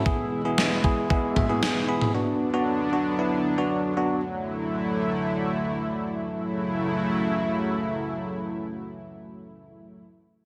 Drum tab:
SD |----o-------o---|----------------|----------------|----------------|
T2 |----------o----o|----------------|----------------|----------------|
BD |o-----o-o-o-----|----------------|----------------|----------------|

SD |----------------|
T2 |----------------|
BD |----------------|